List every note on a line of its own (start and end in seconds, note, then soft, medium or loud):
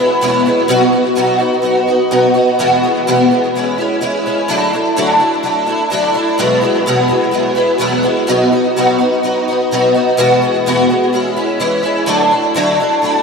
0.00 0.21 F#3 soft
0.00 0.21 G#3 medium
0.00 0.22 B3 medium
0.00 0.21 E4 medium
0.21 0.45 E2 medium
0.21 0.45 B2 medium
0.21 0.45 F#3 medium
0.21 0.46 G#3 medium
0.21 0.46 B3 medium
0.21 0.45 E4 medium
0.46 0.68 F#3 soft
0.46 0.69 G#3 medium
0.46 0.68 B3 medium
0.46 0.69 E4 medium
0.68 0.92 B2 loud
0.68 0.93 F#3 loud
0.68 0.93 B3 medium
0.68 0.93 D#4 medium
0.68 0.91 F#4 loud
0.92 1.16 B3 soft
0.92 1.16 D#4 soft
0.92 1.16 F#4 medium
1.15 1.40 B2 medium
1.15 1.40 F#3 loud
1.15 1.40 B3 medium
1.15 1.39 D#4 medium
1.15 1.37 F#4 medium
1.39 1.62 B3 soft
1.39 1.63 D#4 soft
1.39 1.63 F#4 medium
1.62 1.87 F#3 medium
1.62 1.87 B3 medium
1.62 1.88 D#4 medium
1.62 1.86 F#4 medium
1.87 2.10 B3 soft
1.87 2.11 D#4 medium
1.87 2.11 F#4 medium
2.11 2.35 B2 medium
2.11 2.35 F#3 medium
2.11 2.35 B3 medium
2.11 2.35 D#4 medium
2.11 2.33 F#4 medium
2.34 2.59 B3 soft
2.34 2.59 D#4 medium
2.34 2.58 F#4 medium
2.59 2.83 E2 medium
2.59 2.83 B2 medium
2.59 2.83 E3 loud
2.59 2.83 G#3 medium
2.59 2.82 B3 loud
2.59 2.82 F#4 loud
2.83 3.06 E3 soft
2.83 3.07 G#3 soft
2.83 3.07 B3 soft
2.83 3.07 F#4 medium
3.07 3.31 E2 medium
3.07 3.31 B2 medium
3.07 3.31 E3 medium
3.07 3.31 G#3 medium
3.07 3.30 B3 loud
3.07 3.30 F#4 loud
3.31 3.54 E3 soft
3.31 3.55 G#3 soft
3.31 3.55 B3 medium
3.31 3.54 F#4 medium
3.55 3.78 E3 medium
3.55 3.79 G#3 medium
3.55 3.79 C#4 medium
3.55 3.77 E4 medium
3.78 4.00 G#3 soft
3.78 4.01 C#4 medium
3.78 4.02 E4 medium
4.01 4.25 E3 medium
4.01 4.25 G#3 medium
4.01 4.26 C#4 medium
4.01 4.25 E4 medium
4.26 4.49 G#3 soft
4.26 4.50 C#4 medium
4.26 4.49 E4 medium
4.48 4.72 D3 medium
4.48 4.73 F#3 medium
4.48 4.73 A3 loud
4.48 4.73 D4 medium
4.48 4.72 E4 loud
4.73 4.97 A3 soft
4.73 4.97 D4 soft
4.73 4.97 E4 medium
4.96 5.20 D3 medium
4.96 5.21 F#3 medium
4.96 5.21 A3 medium
4.96 5.20 D4 loud
4.96 5.18 E4 medium
5.20 5.42 A3 soft
5.20 5.44 D4 soft
5.20 5.44 E4 medium
5.43 5.67 F#3 medium
5.43 5.68 A3 medium
5.43 5.66 D4 medium
5.43 5.65 E4 medium
5.66 5.90 A3 medium
5.66 5.91 D4 medium
5.66 5.91 E4 medium
5.90 6.15 D3 medium
5.90 6.15 F#3 medium
5.90 6.15 A3 medium
5.90 6.15 D4 loud
5.90 6.13 E4 medium
6.14 6.38 A3 soft
6.14 6.39 D4 medium
6.14 6.39 E4 medium
6.38 6.62 E2 medium
6.38 6.63 B2 medium
6.38 6.63 F#3 loud
6.38 6.63 G#3 loud
6.38 6.62 B3 medium
6.38 6.60 E4 loud
6.61 6.86 F#3 soft
6.61 6.87 G#3 soft
6.61 6.87 B3 medium
6.61 6.86 E4 medium
6.86 7.10 E2 medium
6.86 7.11 B2 loud
6.86 7.10 F#3 loud
6.86 7.09 G#3 loud
6.86 7.08 B3 medium
6.86 7.07 E4 loud
7.08 7.30 F#3 soft
7.08 7.32 G#3 soft
7.08 7.32 B3 medium
7.08 7.33 E4 medium
7.31 7.56 F#3 medium
7.31 7.56 G#3 medium
7.31 7.55 B3 medium
7.31 7.54 E4 medium
7.55 7.79 F#3 soft
7.55 7.79 G#3 medium
7.55 7.80 B3 medium
7.55 7.80 E4 medium
7.78 8.04 E2 medium
7.78 8.04 B2 medium
7.78 8.04 F#3 medium
7.78 8.03 G#3 medium
7.78 8.03 B3 medium
7.78 8.02 E4 loud
8.03 8.27 F#3 medium
8.03 8.28 G#3 medium
8.03 8.28 B3 medium
8.03 8.28 E4 medium
8.27 8.52 B2 loud
8.27 8.52 F#3 loud
8.27 8.53 B3 medium
8.27 8.52 D#4 loud
8.27 8.51 F#4 loud
8.52 8.76 B3 soft
8.52 8.77 D#4 soft
8.52 8.76 F#4 medium
8.76 9.00 B2 medium
8.76 9.00 F#3 medium
8.76 9.01 B3 medium
8.76 8.99 D#4 loud
8.76 8.97 F#4 medium
8.99 9.23 B3 soft
8.99 9.24 D#4 medium
8.99 9.23 F#4 medium
9.23 9.47 F#3 medium
9.23 9.48 B3 medium
9.23 9.48 D#4 medium
9.23 9.47 F#4 medium
9.48 9.72 B3 medium
9.48 9.72 D#4 medium
9.48 9.72 F#4 medium
9.71 9.95 B2 medium
9.71 9.96 F#3 medium
9.71 9.96 B3 medium
9.71 9.95 D#4 medium
9.71 9.93 F#4 medium
9.95 10.18 B3 soft
9.95 10.19 D#4 medium
9.95 10.18 F#4 medium
10.17 10.42 E2 medium
10.17 10.42 B2 medium
10.17 10.42 E3 loud
10.17 10.42 G#3 loud
10.17 10.42 B3 loud
10.17 10.41 F#4 loud
10.42 10.66 E3 soft
10.42 10.66 G#3 soft
10.42 10.67 B3 medium
10.42 10.66 F#4 medium
10.66 10.90 E2 medium
10.66 10.90 B2 medium
10.66 10.90 E3 loud
10.66 10.90 G#3 loud
10.66 10.89 B3 loud
10.66 10.88 F#4 loud
10.90 11.12 E3 soft
10.90 11.13 G#3 soft
10.90 11.14 B3 medium
10.90 11.13 F#4 medium
11.13 11.37 E3 medium
11.13 11.37 G#3 medium
11.13 11.36 C#4 medium
11.13 11.35 E4 medium
11.36 11.59 G#3 soft
11.36 11.59 C#4 medium
11.36 11.60 E4 medium
11.60 11.84 E3 medium
11.60 11.84 G#3 medium
11.60 11.84 C#4 medium
11.60 11.81 E4 medium
11.83 12.07 G#3 medium
11.83 12.08 C#4 medium
11.83 12.07 E4 medium
12.06 12.31 D3 medium
12.06 12.31 F#3 medium
12.06 12.32 A3 loud
12.06 12.31 D4 loud
12.06 12.30 E4 loud
12.31 12.55 A3 soft
12.31 12.56 D4 medium
12.31 12.55 E4 medium
12.54 12.79 D3 medium
12.54 12.79 F#3 medium
12.54 12.80 A3 medium
12.54 12.80 D4 loud
12.54 12.79 E4 loud
12.80 13.02 A3 soft
12.80 13.03 D4 medium
12.80 13.03 E4 medium
13.02 13.23 F#3 medium
13.02 13.23 A3 medium
13.02 13.23 D4 medium
13.02 13.23 E4 medium